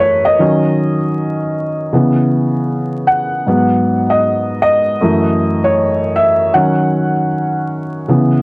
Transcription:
Already playing: F#2 E3 A3 B4
0.00 C#5
0.25 D#5
0.39 D#3 F#3 C#4
1.92 C#3 E3 B3
3.07 F#5
3.47 G#2 F#3 B3
4.10 D#5
4.62 D#5
5.01 F#2 E3 A3
5.64 C#5
6.16 E5
6.54 D#3 F#3 C#4 F#5
8.08 C#3 E3 B3

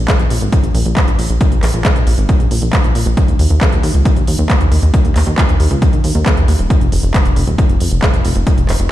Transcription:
0.08 kick, clap, closed hi-hat
0.19 A#1, closed hi-hat
0.30 A#1, open hi-hat
0.41 G#1, closed hi-hat
0.52 kick, closed hi-hat
0.63 A#1, closed hi-hat
0.75 A#1, open hi-hat
0.86 A#1, closed hi-hat
0.97 kick, clap, closed hi-hat
1.08 A#1, closed hi-hat
1.19 A#1, open hi-hat
1.30 A#1, closed hi-hat
1.41 kick, closed hi-hat
1.52 A#1, closed hi-hat
1.63 A#1, clap, open hi-hat
1.74 A#1, closed hi-hat
1.85 kick, clap, closed hi-hat
1.96 A#1, closed hi-hat
2.07 A#1, open hi-hat
2.18 G#1, closed hi-hat
2.29 kick, closed hi-hat
2.40 A#1, closed hi-hat
2.51 A#1, open hi-hat
2.62 A#1, closed hi-hat
2.73 kick, clap, closed hi-hat
2.84 A#1, closed hi-hat
2.95 A#1, open hi-hat
3.06 A#1, closed hi-hat
3.17 kick, closed hi-hat
3.28 D#2, closed hi-hat
3.39 D#2, open hi-hat
3.50 D#2, closed hi-hat
3.61 kick, clap, closed hi-hat
3.72 D#2, closed hi-hat
3.83 D#2, open hi-hat
3.94 C#2, closed hi-hat
4.05 kick, closed hi-hat
4.16 D#2, closed hi-hat
4.27 D#2, open hi-hat
4.39 D#2, closed hi-hat
4.50 kick, clap, closed hi-hat
4.61 D#2, closed hi-hat
4.72 D#2, open hi-hat
4.83 D#2, closed hi-hat
4.94 kick, closed hi-hat
5.05 D#2, closed hi-hat
5.16 D#2, clap, open hi-hat
5.27 D#2, closed hi-hat
5.38 kick, clap, closed hi-hat
5.49 D#2, closed hi-hat
5.60 D#2, open hi-hat
5.71 C#2, closed hi-hat
5.82 kick, closed hi-hat
5.93 D#2, closed hi-hat
6.04 D#2, open hi-hat
6.15 D#2, closed hi-hat
6.26 kick, clap, closed hi-hat
6.37 D#2, closed hi-hat
6.48 D#2, open hi-hat
6.59 D#1, closed hi-hat
6.70 kick, closed hi-hat
6.81 F1, closed hi-hat
6.92 F1, open hi-hat
7.03 F1, closed hi-hat
7.14 kick, clap, closed hi-hat
7.25 F1, closed hi-hat
7.36 F1, open hi-hat
7.47 D#1, closed hi-hat
7.58 kick, closed hi-hat
7.69 F1, closed hi-hat
7.80 F1, open hi-hat
7.91 F1, closed hi-hat
8.02 kick, clap, closed hi-hat
8.14 F1, closed hi-hat
8.25 F1, open hi-hat
8.36 F1, closed hi-hat
8.47 kick, closed hi-hat
8.58 F1, closed hi-hat
8.69 F1, clap, open hi-hat
8.80 F1, closed hi-hat

